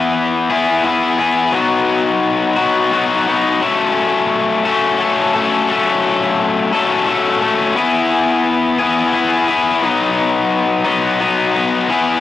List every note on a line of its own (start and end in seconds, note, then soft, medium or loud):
0.00 0.50 E3 medium
0.00 0.50 B3 loud
0.00 0.49 E4 medium
0.00 0.48 G#4 loud
0.50 0.82 E3 medium
0.50 0.83 B3 medium
0.50 0.83 E4 medium
0.50 0.84 G#4 medium
0.83 1.51 E3 medium
0.83 1.19 B3 medium
0.83 1.18 E4 medium
0.83 1.17 G#4 medium
1.18 1.52 B3 medium
1.18 1.52 E4 medium
1.18 1.51 G#4 medium
1.52 2.58 F#3 medium
1.52 2.57 B3 medium
1.52 2.56 D#4 loud
1.52 2.56 F#4 medium
2.56 2.91 F#3 medium
2.56 2.91 B3 medium
2.56 2.91 D#4 medium
2.56 2.93 F#4 loud
2.91 3.60 F#3 medium
2.91 3.27 B3 medium
2.91 3.26 D#4 medium
2.91 3.26 F#4 medium
3.27 3.60 B3 medium
3.27 3.60 D#4 medium
3.27 3.62 F#4 medium
3.61 4.66 F#3 medium
3.61 4.66 A3 loud
3.61 4.65 C#4 loud
3.61 4.64 A4 medium
4.65 4.98 F#3 medium
4.65 4.99 A3 medium
4.65 5.00 C#4 medium
4.65 5.00 A4 medium
4.99 5.67 F#3 medium
4.99 5.34 A3 medium
4.99 5.34 C#4 medium
4.99 5.32 A4 medium
5.34 5.68 A3 medium
5.34 5.69 C#4 medium
5.34 5.70 A4 medium
5.68 6.74 F#3 medium
5.68 6.73 A3 medium
5.68 6.72 C#4 medium
5.68 6.72 A4 loud
6.73 7.06 F#3 medium
6.73 7.06 A3 medium
6.73 7.07 C#4 medium
6.73 7.08 A4 loud
7.07 7.74 F#3 medium
7.07 7.42 A3 medium
7.07 7.41 C#4 medium
7.07 7.40 A4 medium
7.42 7.75 A3 medium
7.42 7.75 C#4 medium
7.42 7.74 A4 medium
7.75 8.81 B3 medium
7.75 8.79 E4 loud
7.75 8.78 G#4 loud
8.79 9.12 B3 medium
8.79 9.13 E4 medium
8.79 9.13 G#4 loud
9.13 9.82 B3 medium
9.13 9.48 E4 medium
9.13 9.47 G#4 medium
9.48 9.82 E4 medium
9.48 9.81 G#4 medium
9.82 10.85 F#3 medium
9.82 10.84 B3 medium
9.82 10.84 D#4 loud
10.85 11.18 F#3 medium
10.85 11.20 B3 medium
10.85 11.20 D#4 medium
11.19 11.87 F#3 medium
11.19 11.55 B3 medium
11.19 11.53 D#4 medium
11.54 11.88 B3 medium
11.54 11.87 D#4 medium
11.89 12.20 B3 medium
11.89 12.20 E4 loud
11.89 12.20 G#4 loud